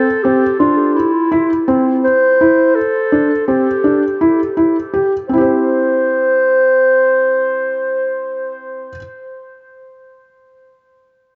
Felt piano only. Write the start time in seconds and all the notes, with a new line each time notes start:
0.25 C4
0.60 D4
1.32 E4
1.68 C4
2.41 E4
3.12 D4
3.48 C4
3.84 D4
4.21 E4
4.57 E4
4.93 G4
5.29 C4
5.33 E4
5.37 G4 C5